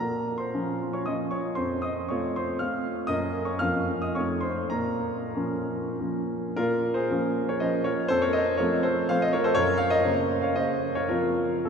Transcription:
Already playing: A#5
0.00 A#2 A#4
0.38 C5 C6
0.54 F3 C#4 F4
0.93 C#5 C#6
1.06 F3 C#4 F4 D#5 D#6
1.31 C#5 C#6
1.55 F2 C5 C6
1.82 D#5 D#6
2.09 A3 C4 F4 C#5 C#6
2.36 C5 C6
2.59 A3 C4 F4 F5 F6
3.07 F#2 A#3 C#4 D#5 D#6
3.45 C#5 C#6
3.59 F2 F3 A#3 C#4 F5 F6
4.02 D#5 D#6
4.15 F2 F3 A3 D#4 C#5 C#6
4.41 C5 C6
4.70 A#2 A#4 A#5
5.35 F3 A#3 C#4
5.99 F3 A#3 C#4
6.57 A#2 F4 A#4
6.94 G#4 C5
7.10 F3 A#3 C#4
7.49 A#4 C#5
7.60 F3 A#3 C#4 C5 D#5
7.84 A#4 C#5
8.08 F2 A4 C5
8.22 A#4 C#5
8.33 C5 D#5
8.57 F3 A3 C4 A#4 C#5
8.83 A4 C5
9.09 F3 A3 C4 C5 F5
9.22 C5 D#5
9.33 A#4 C#5
9.44 A4 C5
9.55 F#2 A#4 C#5
9.77 C#5 F5
9.90 C5 D#5
10.05 C#3 A#3
10.42 C#5 F5
10.56 C#3 A#3 C5 D#5
10.95 A#4 C#5
11.09 F3 C4 F4 A#4
11.65 A4

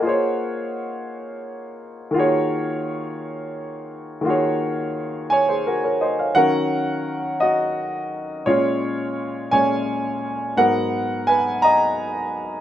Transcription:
Already playing: D#5 F#5
0.00 A#3 F4
0.05 G#4 C5 C#5
2.11 D#3 A#3 F4
2.16 F#4 G#4 C#5
4.21 D#3 A#3 F4
4.26 F#4 G#4 C#5
5.30 C#5 G#5
5.49 G#4 C5
5.67 F#4 A#4
5.84 A#4 C#5
6.01 C5 D#5
6.19 C#5 F5
6.35 D#3 F#3 C#4 A#4 F#5
7.40 F#4 D#5
8.46 A#2 G#3 C#4 F4 C#5
9.51 A#2 G#3 C#4 C#5 G#5
10.57 G#2 F#3 B3 A#4 F#5
11.27 B4 G#5
11.62 D#5 A#5

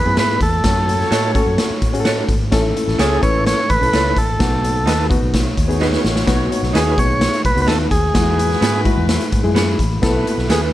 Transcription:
Already playing: B3 E4 G#4 B4
0.05 F#2 B3 E4 G#4
0.17 G#2 E4 G#4 B4, snare, closed hi-hat
0.40 E2 A4, kick, closed hi-hat
0.64 F#2 C#4 F#4 A4 C#5, kick, snare, closed hi-hat
0.89 closed hi-hat
1.00 snare
1.11 A2 F#4 A4 C#5, snare, closed hi-hat
1.34 C#4 F#4 A4, kick, closed hi-hat
1.46 F#2
1.58 snare, closed hi-hat
1.70 muted fingered electric bass stroke
1.82 A2, kick, closed hi-hat
1.93 C#4 F#4 G#4, closed hi-hat
2.00 A4
2.05 F#4 A4 C#5, snare, closed hi-hat
2.28 G#1, kick, closed hi-hat
2.51 A1 C#4 E4 A4, kick, snare, closed hi-hat
2.77 closed hi-hat
2.88 A1, snare
2.98 C#2 E4 G#4 A4 C#5, snare, closed hi-hat
3.22 A1 C#4 E4 B4 C#5, kick, closed hi-hat
3.46 C#5, snare, closed hi-hat
3.70 A1 B4, kick, closed hi-hat
3.81 B1 C#4 E4 A4, closed hi-hat
3.93 C#2 E4 A4 C#5, snare, closed hi-hat
4.16 A1 A4, kick, closed hi-hat
4.39 B1 B3 D#4 F#4, kick, snare, closed hi-hat
4.64 closed hi-hat
4.86 D#2 D#4 F#4 B4, snare, closed hi-hat
5.09 B3 D#4 F#4, kick, closed hi-hat
5.22 B1
5.34 D#4 F#4 C#5, kick, snare, closed hi-hat
5.57 D#2, kick, closed hi-hat
5.68 B3 D#4 G#4, closed hi-hat
5.80 D#4 F#4 B4, snare
5.93 snare
6.04 A1, snare
6.16 snare
6.27 B1 B3 D#4 F#4, kick, snare, closed hi-hat
6.52 closed hi-hat
6.63 B1, snare
6.73 D#2 D#4 F#4 G#4 B4, snare, closed hi-hat
6.97 B1 B3 D#4 G#4 C#5, kick, closed hi-hat
7.21 snare, closed hi-hat
7.33 closed hi-hat
7.45 B1 B4, kick, closed hi-hat
7.56 C#2 B3 D#4 F#4, closed hi-hat
7.62 B4
7.67 D#4 F#4 A4 B4, snare, closed hi-hat
7.91 D#2 G#4, kick, closed hi-hat
8.14 E2 G#3 E4 F#4 G#4 B4, kick, snare, closed hi-hat
8.39 closed hi-hat
8.51 snare
8.61 G#2 B3 F#4 G#4, snare, closed hi-hat
8.84 G#3 E4 F#4, kick, closed hi-hat
8.97 E2
9.09 snare, closed hi-hat
9.20 closed hi-hat
9.32 G#2, kick, closed hi-hat
9.43 F#2 G#3 E4 G#4
9.55 B3 F#4 G#4 B5, snare, closed hi-hat
9.79 A1, kick, closed hi-hat
10.02 B1 B3 E4 F#4 A4 B4, kick, snare, closed hi-hat
10.27 closed hi-hat
10.38 B1, snare
10.49 D#2 E4 G#4 A4 B4, snare, closed hi-hat

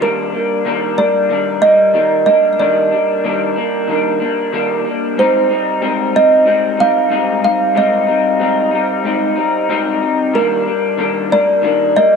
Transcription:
0.01 D#3 G3 A#3 D4 A#4
0.32 G3 A#3 D4
0.65 D#3 G3 A#3 D4
0.97 G3 A#3 D4 D5
1.29 D#3 G3 A#3 D4
1.62 G3 A#3 D#5
1.94 D#3 G3 A#3
2.26 G3 A#3 D4 D#5
2.53 D#5
2.59 D#3 G3 A#3 D4 D5
2.91 G3 A#3 D4
3.24 D#3 G3 A#3 D4
3.56 G3 A#3 D4
3.88 D#3 G3 A#3 D4
4.20 G3 A#3 D4
4.52 D#3 G3 A#3 D4
4.84 G3 A#3 D4
5.17 G#2 G3 C4 D#4 C5
5.49 G3 C4 D#4
5.81 G#2 G3 C4 D#4
6.13 G3 C4 D#4 D#5
6.45 G#2 G3 C4 D#4
6.77 G3 C4 D#4 F5
7.10 G#2 G3 C4 D#4
7.42 G3 C4 D#4 F5
7.75 G#2 G3 C4 D#4 D#5
8.07 G3 C4 D#4
8.40 G#2 G3 C4 D#4
8.71 G3 C4 D#4
9.04 G#2 G3 C4 D#4
9.36 G3 C4 D#4
9.69 G#2 G3 C4 D#4
10.01 G3 C4 D#4
10.33 D#3 G3 A#3 D4 A#4
10.65 G3 A#3 D4
10.97 D#3 G3 A#3 D4
11.30 G3 A#3 D4 D5
11.62 D#3 G3 A#3 D4
11.96 G3 A#3 D#5

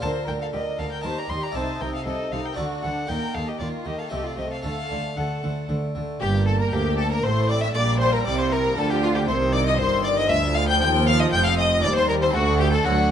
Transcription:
0.00 D2 D3 F4 A#4 C5 A5
0.27 D2 D3 A#4 G5
0.41 A4 F5
0.53 D2 D3 G4 A#4 D#5
0.78 D2 D3 A4 A#4 F5
0.91 A#4 G5
1.01 D#2 D#3 D#4 A#4 A5
1.05 G4 C5
1.17 D5 A#5
1.29 D#2 D#3 G4 D#5 C6
1.42 D5 A#5
1.51 C2 C3 A3 D#4 A4
1.55 C3 D#4 C5 A5
1.80 C2 C3 D#4 A#4 G5
1.94 A4 F5
2.06 C2 C3 D#4 A4 D#5
2.32 C2 C3 D#4 A4 F5
2.44 A#4 G5
2.53 A3 D4 F#4 D5
2.57 D2 D3 D4 D5
2.83 D2 D3 D4 A4 F#5
3.06 D#2 D#3 A#3 G4 A#4 G5
3.34 D#2 D#3 A#3 A4 F5
3.47 G4 D#5
3.59 D#2 D#3 A#3 F4 D5
3.85 D#2 D#3 A#3 G4 D#5
3.98 A4 F5
4.08 C2 C3 A3 G4 A4 D#5
4.13 D#5
4.24 F4 D5
4.37 C2 C3 A3 G4 D#5
4.49 A4 F5
4.62 D2 D3 A3 A4 F5
4.90 D2 D3 A3
5.16 D2 D3 A3 A4 F#5
5.43 D2 D3 A3
5.69 D2 D3 A3
5.95 D2 D3 A3
6.20 G1 G2 A#3 G4 G5
6.34 A#3
6.47 A4 A5
6.59 A#4 A#5
6.71 D2 A#3 G4 G5
6.97 G4 A4 A5
7.11 A#3 A#4 A#5
7.23 A1 A2 A3 C5 C6
7.38 A3
7.49 C4 D5 D6
7.61 D4 E5 E6
7.74 A#1 A#2 G3 D5 D6
7.89 A#3
8.00 G4 C5 C6
8.13 A4 A#4 A#5
8.26 C2 C3 G4 D5 D6
8.39 A#3 C5 C6
8.52 G4 A#4 A#5
8.65 A#3
8.77 D2 D3 F3 G4 A4 A5
8.90 F4 G4 G5
9.03 F4 G4 F5
9.15 A#3 G4 G5
9.27 C2 C3 D#3 C5 C6
9.41 C4
9.53 D#4 D5 D6
9.66 F4 D#5 D#6
9.77 G1 G2 D#3 D#4 C5 C6
9.93 C4
10.04 G4 D5 D6
10.17 C4 D#5 D#6
10.29 D2 F3 E5 E6
10.44 D4
10.55 B4 F5 F6
10.68 C5 G5 G6
10.81 D#2 G5 G6
10.95 C4
11.07 C5 F5 F6
11.20 D5 D#5 D#6
11.32 F1 F2 C5 G5 G6
11.45 C4 F5 F6
11.58 G4 D#5 D#6
11.72 C4
11.83 D#2 G3 C5 D5 D6
11.96 A#4 C5 C6
12.09 A#4 C5 A#5
12.22 C4 C5 C6
12.33 D2 A3 F#4 F#5
12.48 D4
12.59 G4 A4 G5
12.72 A4 A#4 A5
12.84 D2 D3 F#3 F#4 A4 F#5
12.98 D4

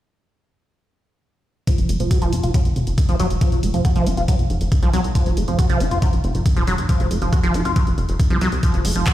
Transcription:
1.67 F3, kick, closed hi-hat
1.78 F1, closed hi-hat
1.89 F1 A3, closed hi-hat
2.00 F1 F3, closed hi-hat
2.11 F#4, kick, closed hi-hat
2.22 F1 F3, closed hi-hat
2.33 F1 F#4, closed hi-hat
2.43 F1 F4, closed hi-hat
2.54 F#3, kick, closed hi-hat
2.65 F1, closed hi-hat
2.76 F1, closed hi-hat
2.87 F1, closed hi-hat
2.98 kick, closed hi-hat
3.09 D#1 F3, closed hi-hat
3.20 F1 F#3, closed hi-hat
3.30 F1, closed hi-hat
3.41 F3, kick, closed hi-hat
3.52 F1, closed hi-hat
3.63 F1 A3, closed hi-hat
3.74 F1 F3, closed hi-hat
3.85 F#4, kick, closed hi-hat
3.96 F1 F3, closed hi-hat
4.06 F1 F#4, closed hi-hat
4.17 F1 F4, closed hi-hat
4.28 F#3, kick, closed hi-hat
4.39 F1, closed hi-hat
4.50 F1, closed hi-hat
4.61 F1, closed hi-hat
4.72 kick, closed hi-hat
4.83 C2 F3, closed hi-hat
4.93 C2 F#3, closed hi-hat
5.04 C2, closed hi-hat
5.15 F3, kick, closed hi-hat
5.26 F1, closed hi-hat
5.37 F1 A3, closed hi-hat
5.48 F1 F3, closed hi-hat
5.59 F#4, kick, closed hi-hat
5.70 F1 F3, closed hi-hat
5.80 F1 F#4, closed hi-hat
5.91 F1 F4, closed hi-hat
6.02 F#3, kick, closed hi-hat
6.13 F1, closed hi-hat
6.24 F1, closed hi-hat
6.35 F1, closed hi-hat
6.46 kick, closed hi-hat
6.56 D#1 F3, closed hi-hat
6.67 F1 F#3, closed hi-hat
6.78 F1, closed hi-hat
6.89 F3, kick, closed hi-hat
7.00 F1, closed hi-hat
7.11 F1 A3, closed hi-hat
7.22 F1 F3, closed hi-hat
7.33 F#4, kick, closed hi-hat
7.43 F1 F3, closed hi-hat
7.54 F1 F#4, closed hi-hat
7.65 F1 F4, closed hi-hat
7.76 F#3, kick, closed hi-hat
7.87 F1, closed hi-hat
7.98 F1, closed hi-hat
8.09 F1, closed hi-hat
8.20 kick, closed hi-hat
8.30 C2 F3, closed hi-hat
8.41 C2 F#3, closed hi-hat
8.52 C2, closed hi-hat
8.63 F3, kick, closed hi-hat
8.74 F1, closed hi-hat
8.85 F1 A3, open hi-hat
8.96 F1 F3, closed hi-hat
9.06 F#4, kick, clap, closed hi-hat

